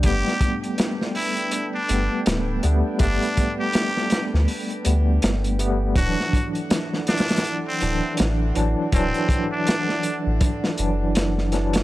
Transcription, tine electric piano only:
X:1
M:4/4
L:1/8
Q:"Swing 16ths" 1/4=81
K:G
V:1 name="Tine electric piano" clef=bass
[G,A,B,]4- [G,A,B,] [G,A,B,]2 [G,A,B,] | [G,A,B,]4- [G,A,B,] [G,A,B,]2 [G,A,B,] | [E,F,D]4- [E,F,D] [E,F,D]2 [E,F,D] | [E,F,D]4- [E,F,D] [E,F,D]2 [E,F,D] |]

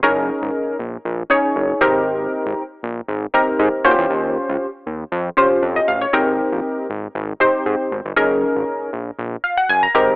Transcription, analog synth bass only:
X:1
M:4/4
L:1/16
Q:1/4=118
K:Ab
V:1 name="Analog synth bass" clef=bass
_G,,,3 A,,, z2 B,,,2 B,,,2 z2 G,,,2 A,,,2- | A,,,3 A,,, z2 B,,,2 A,,,2 z2 A,, z E,, _F,, | E,,3 D,, z2 E,,2 F,,2 z2 F,,2 =A,,,2 | A,,,3 B,,, z2 A,,,2 A,,,2 z2 A,, z A,,, G,,, |
_G,,,3 A,,, z2 B,,,2 B,,,2 z2 G,,,2 A,,,2 |]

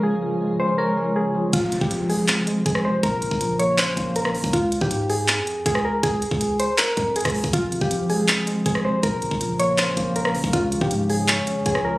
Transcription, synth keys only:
X:1
M:4/4
L:1/16
Q:1/4=160
K:Dblyd
V:1 name="Synth keys"
A6 c2 B4 A4 | F3 G3 A6 A2 c2 | B6 d2 c4 B4 | F3 G3 A6 A2 B2 |
A6 c2 B4 A4 | F3 G3 A6 A2 c2 | B6 d2 c4 B4 | F3 G3 A6 A2 B2 |]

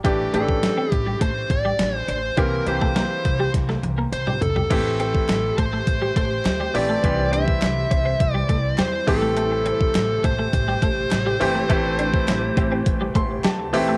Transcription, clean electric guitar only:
X:1
M:4/4
L:1/16
Q:1/4=103
K:Aphr
V:1 name="Clean electric guitar"
G, z A, z2 C z G, A, z2 G, z2 D z | C z2 A, B, z2 G, z A, z B, z G, z G, | A, z C z3 A, A, z G, A, z2 G, z A, | C z D z3 C C z G, A, z G, z2 A, |
A, z C z3 A, A, z G, A, z2 G, z A, | A, z D z3 C C z G, A, z G, z2 A, |]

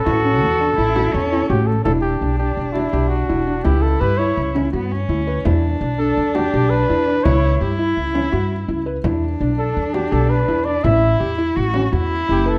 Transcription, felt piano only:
X:1
M:5/4
L:1/8
Q:1/4=167
K:Edor
V:1 name="Felt piano"
E C2 D E F2 E F2 | E2 D D2 F G2 E D | E2 G E2 C F2 E B | E2 D D2 F G2 E D |
E2 G E2 C F2 E B | E2 D D2 F G2 E D | E2 G E2 C F2 E B |]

